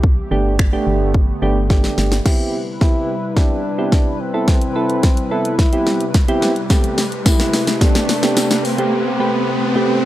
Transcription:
0.00 0.21 C2 medium
0.00 2.23 D3 medium
0.00 2.23 A3 medium
0.00 2.23 B3 medium
0.00 2.22 G4 medium
0.00 kick loud
0.31 0.76 G1 medium
0.31 0.55 A3 medium
0.31 0.55 B3 medium
0.31 0.55 D4 medium
0.31 0.55 G4 loud
0.59 finger snap loud
0.59 kick loud
0.73 1.12 A3 loud
0.73 1.12 B3 medium
0.73 1.12 D4 medium
0.73 1.12 G4 loud
0.87 1.32 G1 medium
1.14 kick loud
1.42 1.87 G1 medium
1.42 1.58 A3 loud
1.42 1.58 B3 medium
1.42 1.58 D4 medium
1.42 1.58 G4 loud
1.70 2.17 A3 medium
1.70 2.17 B3 medium
1.70 2.17 D4 medium
1.70 2.17 G4 medium
1.70 kick loud
1.70 snare medium
1.84 snare medium
1.98 2.20 G1 medium
1.98 snare medium
2.12 snare medium
2.25 10.05 C3 medium
2.25 6.66 G3 medium
2.25 2.57 B3 medium
2.25 2.57 C4 medium
2.25 6.66 E4 medium
2.25 2.57 E4 medium
2.25 2.57 G4 medium
2.25 6.66 B4 medium
2.25 kick loud
2.25 snare soft
2.25 crash medium
2.25 riser medium
2.81 3.12 B3 medium
2.81 3.13 C4 medium
2.81 3.38 E4 loud
2.81 3.13 E4 medium
2.81 3.13 G4 medium
2.81 kick loud
2.81 snare medium
3.37 3.60 B3 medium
3.37 3.60 C4 medium
3.37 4.22 D4 loud
3.37 3.60 E4 medium
3.37 3.60 G4 medium
3.37 kick loud
3.37 snare medium
3.78 4.10 B3 medium
3.78 4.10 C4 medium
3.78 4.10 E4 medium
3.78 4.10 G4 medium
3.92 kick loud
3.92 snare medium
4.20 5.33 C4 medium
4.34 4.57 B3 medium
4.34 4.57 C4 medium
4.34 4.57 E4 medium
4.34 4.58 A4 medium
4.48 kick loud
4.48 snare medium
4.48 closed hi-hat medium
4.62 closed hi-hat medium
4.75 5.07 C4 medium
4.75 5.07 E4 medium
4.75 5.07 A4 medium
4.75 5.07 B4 medium
4.90 closed hi-hat medium
5.03 kick loud
5.03 snare medium
5.03 closed hi-hat medium
5.17 closed hi-hat medium
5.31 5.55 B3 medium
5.31 5.55 C4 medium
5.31 6.42 E4 loud
5.31 5.55 E4 medium
5.31 5.55 A4 medium
5.45 closed hi-hat medium
5.59 kick loud
5.59 snare medium
5.59 closed hi-hat medium
5.72 6.04 B3 medium
5.72 6.04 C4 medium
5.72 6.04 E4 medium
5.72 6.04 G4 medium
5.72 closed hi-hat medium
5.87 snare medium
6.00 closed hi-hat medium
6.14 kick loud
6.14 snare medium
6.14 closed hi-hat medium
6.28 6.52 B3 loud
6.28 6.52 C4 loud
6.28 6.52 E4 medium
6.28 6.52 G4 loud
6.28 closed hi-hat medium
6.42 snare medium
6.56 closed hi-hat medium
6.70 7.01 A3 medium
6.70 10.05 A3 medium
6.70 7.01 B3 medium
6.70 7.01 C4 medium
6.70 10.05 G4 medium
6.70 7.02 G4 loud
6.70 10.05 B4 medium
6.70 kick loud
6.70 snare loud
6.70 closed hi-hat medium
6.70 tambourine soft
6.84 closed hi-hat medium
6.98 snare medium
6.98 open hi-hat medium
6.98 tambourine soft
7.12 closed hi-hat medium
7.25 7.57 A3 medium
7.25 7.57 B3 medium
7.25 7.57 C4 medium
7.25 7.83 E4 loud
7.25 7.57 G4 medium
7.25 kick loud
7.25 snare loud
7.25 closed hi-hat medium
7.25 tambourine medium
7.40 snare loud
7.40 closed hi-hat medium
7.53 snare loud
7.53 open hi-hat medium
7.53 tambourine medium
7.67 snare loud
7.67 closed hi-hat medium
7.81 8.05 A3 medium
7.81 8.05 B3 medium
7.81 8.05 C4 medium
7.81 8.66 D4 loud
7.81 8.05 G4 medium
7.81 kick loud
7.81 snare loud
7.81 closed hi-hat medium
7.95 snare loud
7.95 closed hi-hat medium
8.09 snare loud
8.09 open hi-hat medium
8.09 tambourine soft
8.23 8.54 A3 medium
8.23 8.54 B3 medium
8.23 8.54 C4 medium
8.23 8.54 G4 medium
8.23 snare loud
8.23 closed hi-hat medium
8.37 snare loud
8.37 closed hi-hat medium
8.37 tambourine medium
8.51 snare loud
8.51 closed hi-hat medium
8.65 9.75 C4 loud
8.65 open hi-hat medium
8.65 tambourine soft
8.78 9.02 A3 medium
8.78 9.02 B3 medium
8.78 9.02 C4 medium
8.78 9.02 G4 medium
8.78 closed hi-hat medium
9.20 9.51 A3 medium
9.20 9.51 C4 medium
9.20 9.51 G4 medium
9.20 9.51 B4 medium
9.75 9.99 A3 medium
9.75 9.99 B3 medium
9.75 9.99 C4 medium
9.75 10.05 C4 medium
9.75 9.99 G4 medium

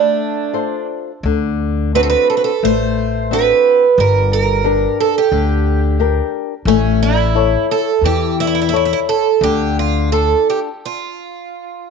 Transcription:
0.00 0.51 A3 medium
0.00 0.86 D4 medium
0.53 1.10 F4 soft
0.53 1.11 A4 soft
0.53 1.11 C5 soft
1.23 2.14 D2 medium
1.23 1.92 D3 medium
1.95 2.50 C4 soft
1.95 2.50 D4 soft
1.95 2.50 F#4 medium
1.95 2.02 B4 medium
2.03 2.09 A4 medium
2.10 2.29 B4 medium
2.30 2.36 A4 medium
2.37 2.43 B4 medium
2.44 2.64 A4 medium
2.63 3.51 A1 medium
2.63 3.29 A3 medium
2.63 3.33 C5 loud
3.31 3.84 C4 soft
3.31 3.85 D4 soft
3.31 3.85 F#4 soft
3.31 4.00 B4 medium
3.98 4.85 G1 loud
3.98 4.63 G3 medium
3.98 4.32 A#4 medium
4.33 5.00 A#4 medium
4.64 5.18 D4 soft
4.64 5.18 G4 soft
4.64 5.19 A#4 medium
5.00 5.15 A4 medium
5.18 6.30 G4 medium
5.32 6.19 D2 medium
5.32 5.97 D3 medium
5.99 6.53 D4 soft
5.99 6.53 G4 soft
5.99 6.53 A#4 soft
6.65 7.54 A1 loud
6.65 7.32 A3 medium
6.65 7.02 C#4 loud
7.03 7.65 E4 medium
7.35 7.89 E4 medium
7.35 7.90 A4 medium
7.35 7.90 C#5 medium
7.71 8.05 A4 medium
8.01 8.92 E2 medium
8.01 8.71 E3 medium
8.05 8.40 G4 loud
8.40 8.46 E4 medium
8.47 8.54 E4 medium
8.55 8.60 E4 medium
8.62 8.68 E4 medium
8.69 8.75 E4 medium
8.69 9.27 E4 soft
8.69 9.27 A4 soft
8.74 8.83 E4 medium
8.74 9.28 C#5 medium
8.85 8.91 E4 medium
8.93 8.99 E4 medium
9.09 9.43 A4 medium
9.41 10.32 D2 loud
9.41 10.09 D3 medium
9.41 9.78 G4 medium
9.79 10.12 F4 medium
10.12 10.68 D4 soft
10.12 10.68 F4 soft
10.12 10.48 A4 medium
10.12 10.69 A4 medium
10.50 10.59 G4 medium
10.85 11.87 F4 medium

